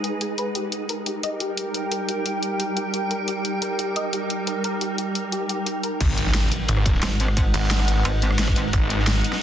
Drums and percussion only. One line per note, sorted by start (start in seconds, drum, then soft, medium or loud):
0.04 closed hi-hat medium
0.21 closed hi-hat medium
0.38 closed hi-hat medium
0.55 closed hi-hat medium
0.72 closed hi-hat medium
0.89 closed hi-hat medium
1.06 closed hi-hat medium
1.23 closed hi-hat medium
1.40 closed hi-hat medium
1.57 closed hi-hat medium
1.74 closed hi-hat medium
1.92 closed hi-hat medium
2.09 closed hi-hat medium
2.26 closed hi-hat medium
2.43 closed hi-hat medium
2.60 closed hi-hat medium
2.77 closed hi-hat medium
2.94 closed hi-hat medium
3.11 closed hi-hat medium
3.28 closed hi-hat medium
3.45 closed hi-hat medium
3.62 closed hi-hat medium
3.79 closed hi-hat medium
3.96 closed hi-hat medium
4.13 closed hi-hat medium
4.30 closed hi-hat medium
4.47 closed hi-hat medium
4.64 closed hi-hat medium
4.81 closed hi-hat medium
4.98 closed hi-hat medium
5.15 closed hi-hat medium
5.32 closed hi-hat medium
5.49 closed hi-hat medium
5.66 closed hi-hat medium
5.83 closed hi-hat medium
6.01 kick loud
6.01 closed hi-hat loud
6.01 crash loud
6.01 ride medium
6.18 closed hi-hat medium
6.18 ride medium
6.26 snare soft
6.35 snare loud
6.35 closed hi-hat loud
6.35 ride medium
6.43 ride soft
6.51 closed hi-hat medium
6.51 ride medium
6.68 closed hi-hat loud
6.68 ride medium
6.77 cross-stick medium
6.85 kick loud
6.85 closed hi-hat medium
6.85 ride medium
6.94 snare soft
7.03 snare loud
7.03 closed hi-hat loud
7.03 ride medium
7.20 snare soft
7.20 closed hi-hat medium
7.20 ride medium
7.28 cross-stick medium
7.28 snare soft
7.37 kick loud
7.37 closed hi-hat loud
7.37 ride medium
7.54 closed hi-hat medium
7.54 open hi-hat medium
7.62 ride soft
7.71 snare loud
7.71 closed hi-hat medium
7.71 ride medium
7.80 cross-stick medium
7.88 snare medium
7.88 closed hi-hat medium
7.88 ride medium
8.05 closed hi-hat medium
8.05 ride medium
8.22 closed hi-hat medium
8.22 ride medium
8.31 cross-stick medium
8.31 snare medium
8.39 snare loud
8.39 closed hi-hat medium
8.39 ride medium
8.47 kick loud
8.47 cross-stick soft
8.47 snare loud
8.47 ride medium
8.55 snare medium
8.55 closed hi-hat medium
8.55 ride medium
8.66 snare soft
8.73 kick loud
8.73 closed hi-hat medium
8.73 ride medium
8.90 closed hi-hat medium
8.90 ride medium
8.99 snare soft
9.07 snare loud
9.07 closed hi-hat medium
9.07 ride medium
9.15 ride soft
9.24 closed hi-hat medium
9.24 ride medium
9.33 snare medium
9.33 snare soft